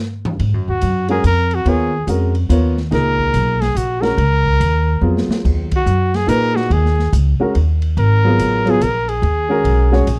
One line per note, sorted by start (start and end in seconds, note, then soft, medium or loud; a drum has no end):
0.25 floor tom loud
0.39 0.54 G#2 medium
0.39 ride medium
0.54 0.67 F#2 soft
0.68 0.81 D#2 medium
0.68 1.07 F#4 medium
0.81 1.23 F#2 medium
0.81 hi-hat pedal medium
0.81 ride medium
1.08 1.22 G#3 medium
1.08 1.22 C#4 medium
1.08 1.23 F#4 medium
1.08 1.24 G#4 medium
1.08 1.23 A#4 medium
1.08 ride soft
1.24 1.64 F2 medium
1.24 1.56 A#4 medium
1.24 hi-hat pedal medium
1.24 ride medium
1.51 1.71 F#4 medium
1.51 ride soft
1.65 2.06 D#2 medium
1.65 1.90 B3 medium
1.65 1.90 F4 medium
1.65 2.09 G#4 medium
1.65 1.91 A#4 medium
1.65 1.91 C#5 medium
1.65 ride medium
2.07 2.48 F2 medium
2.07 2.32 G#3 medium
2.07 2.32 C#4 soft
2.07 2.33 F#4 medium
2.07 2.33 A#4 medium
2.07 hi-hat pedal medium
2.07 ride medium
2.35 ride soft
2.49 2.90 D#2 medium
2.49 2.74 B3 medium
2.49 2.74 F4 medium
2.49 2.75 A#4 soft
2.49 2.75 C#5 medium
2.49 hi-hat pedal medium
2.49 ride medium
2.77 snare soft
2.91 3.32 C#2 medium
2.91 3.55 A#2 soft
2.91 3.55 D#4 medium
2.91 3.56 G#4 soft
2.91 3.56 A#4 medium
2.91 3.63 A#4 loud
2.91 snare soft
2.91 ride medium
3.19 kick soft
3.34 3.74 B1 medium
3.34 hi-hat pedal medium
3.34 ride medium
3.61 3.79 G#4 medium
3.61 snare soft
3.61 ride soft
3.75 4.16 A#1 medium
3.75 4.03 F#4 medium
3.75 hi-hat pedal medium
3.75 ride medium
4.01 4.16 G#3 medium
4.01 4.16 C#4 medium
4.01 4.16 F#4 soft
4.01 5.29 A#4 medium
4.01 4.17 A#4 medium
4.01 snare soft
4.01 ride soft
4.17 4.59 C#2 medium
4.17 ride medium
4.46 kick medium
4.60 5.01 D#2 medium
4.60 hi-hat pedal medium
4.60 ride medium
5.01 5.27 F2 medium
5.01 5.66 F#3 medium
5.01 5.66 B3 soft
5.01 5.66 F4 soft
5.01 5.67 G#4 medium
5.17 snare medium
5.28 muted upright bass stroke soft
5.28 snare medium
5.45 5.86 D#2 medium
5.45 kick medium
5.45 crash medium
5.71 kick medium
5.71 ride medium
5.76 6.17 F#4 medium
5.86 6.27 F#2 medium
5.86 hi-hat pedal medium
6.14 6.30 G#4 medium
6.14 snare soft
6.14 ride soft
6.27 6.92 A#2 medium
6.27 6.69 A#2 medium
6.27 6.92 D#4 medium
6.27 6.93 G#4 medium
6.27 6.57 A#4 loud
6.27 6.93 B4 medium
6.27 hi-hat pedal medium
6.27 ride medium
6.56 6.74 F#4 medium
6.56 snare soft
6.70 7.11 D#2 medium
6.70 7.14 G#4 medium
6.70 ride medium
6.85 snare soft
6.99 snare soft
7.13 7.38 C#2 medium
7.13 hi-hat pedal medium
7.13 ride medium
7.40 7.53 G#3 medium
7.40 7.54 C#4 medium
7.40 7.54 F#4 medium
7.40 7.54 A#4 medium
7.40 muted upright bass stroke soft
7.55 7.96 D#2 medium
7.55 ride medium
7.82 ride soft
7.97 8.38 G#1 medium
7.97 8.72 A#4 loud
7.97 ride soft
8.24 8.64 F#3 medium
8.24 8.64 B3 medium
8.24 8.65 F4 medium
8.24 8.65 G#4 medium
8.39 8.80 A1 medium
8.39 hi-hat pedal medium
8.39 ride medium
8.65 8.79 F#3 medium
8.65 8.80 B3 medium
8.65 8.80 F4 medium
8.65 8.80 G#4 medium
8.65 ride soft
8.70 8.84 G#4 medium
8.81 9.22 A#1 medium
8.81 9.10 A#4 medium
8.81 hi-hat pedal soft
8.81 ride medium
9.09 10.19 G#4 medium
9.09 ride soft
9.22 9.64 D#2 medium
9.22 ride medium
9.49 9.89 G#3 medium
9.49 9.90 C#4 medium
9.49 9.90 F#4 medium
9.49 9.90 A#4 medium
9.64 10.06 B1 medium
9.64 ride medium
9.92 10.06 G#3 medium
9.92 10.06 C#4 medium
9.92 10.06 F#4 medium
9.92 10.07 C#5 medium
9.92 snare soft
10.07 10.19 A#1 medium
10.07 hi-hat pedal medium
10.07 ride medium